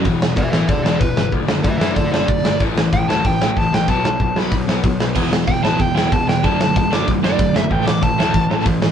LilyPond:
<<
  \new Staff \with { instrumentName = "Lead electric guitar" } { \time 4/4 \key e \minor \tempo 4 = 188 r4 <b' e''>8 <b' e''>8 <a' d''>8 <a' d''>8 b'4 | r4 <b' e''>8 <b' e''>8 <a' d''>8 <a' d''>8 d''4 | r4 g''8 a''8 g''8 g''8 a''8 g''8 | a''8 a''8 a''8 b''8 r2 |
r4 g''8 a''8 g''8 g''8 a''8 g''8 | a''8 a''8 a''8 d'''8 r8 d''4 e''8 | g''8 d'''8 a''2 r4 | }
  \new Staff \with { instrumentName = "Overdriven electric guitar" } { \clef bass \time 4/4 \key e \minor r1 | r1 | r1 | r1 |
<e b e'>8 <e b>8 <e b>8 <e b e'>8 <e b>8 <e b e'>8 <e b>8 <e b>8 | <fis a d'>8 <fis a>8 <fis a>8 <fis a d'>8 <fis a>8 <fis a d'>8 <fis a>8 <fis a>8 | <a, e a>8 <a, e>8 <a, e>8 <a, e a>8 <a, e>8 <a, e a>8 <a, e>8 <a, e>8 | }
  \new Staff \with { instrumentName = "Overdriven electric guitar" } { \clef bass \time 4/4 \key e \minor <e, b, e>8 <e, b,>8 <e, b,>8 <e, b, e>8 <e, b,>8 <e, b, e>8 <e, b,>8 <e, b,>8 | <d a d'>8 <d a>8 <d a>8 <d a d'>8 <d a>8 <d a d'>8 <d a>8 <d a>8 | <a, e a>8 <a, e>8 <a, e>8 <a, e a>8 <a, e>8 <a, e a>8 <a, e>8 <a, e>8 | <b, fis b>8 <b, fis>8 <b, fis>8 <b, fis b>8 <b, fis>8 <b, fis b>8 <b, fis>8 <b, fis>8 |
<e, b, e>8 <e, b,>8 <e, b,>8 <e, b, e>8 <e, b,>8 <e, b, e>8 <e, b,>8 <e, b,>8 | <d a d'>8 <d a>8 <d a>8 <d a d'>8 <d a>8 <d a d'>8 <d a>8 <d a>8 | <a, e a>8 <a, e>8 <a, e>8 <a, e a>8 <a, e>8 <a, e a>8 <a, e>8 <a, e>8 | }
  \new Staff \with { instrumentName = "Picked electric bass" } { \clef bass \time 4/4 \key e \minor e,,8 e,,8 e,,8 a,,8 e,,8 e,,8 e,,8 g,,8 | fis,,8 fis,,8 fis,,8 fis,,8 fis,,8 fis,,8 fis,,8 g,,8 | a,,8 a,,8 a,,8 d,8 a,,8 a,,8 a,,8 a,,8 | b,,8 b,,8 b,,8 b,,8 b,,8 b,,8 b,,8 b,,8 |
e,,8 e,,8 e,,8 a,,8 e,,8 e,,8 e,,8 e,,8 | fis,,8 fis,,8 fis,,8 fis,,8 fis,,8 fis,,8 fis,,8 fis,,8 | a,,8 a,,8 a,,8 d,8 a,,8 a,,8 a,,8 a,,8 | }
  \new DrumStaff \with { instrumentName = "Drums" } \drummode { \time 4/4 <hho bd>8 sn8 <hho bd>8 sn8 <hho bd>8 sn8 <hho bd>8 sn8 | <hho bd>8 sn8 <hho bd>8 sn8 <hho bd>8 sn8 <hho bd>8 sn8 | <hho bd>8 sn8 <hho bd>8 sn8 <hho bd>8 sn8 <hho bd>8 sn8 | <hho bd>8 sn8 <hho bd>8 sn8 <hho bd>8 sn8 <hho bd>8 sn8 |
<cymc bd>8 sn8 <hho bd>8 sn8 <hho bd>8 sn8 <hho bd>8 sn8 | <hho bd>8 sn8 <hho bd>8 sn8 <hho bd>8 sn8 <hho bd>8 sn8 | <hho bd>8 sn8 <hho bd>8 sn8 <hho bd>8 sn8 <hho bd>8 sn8 | }
>>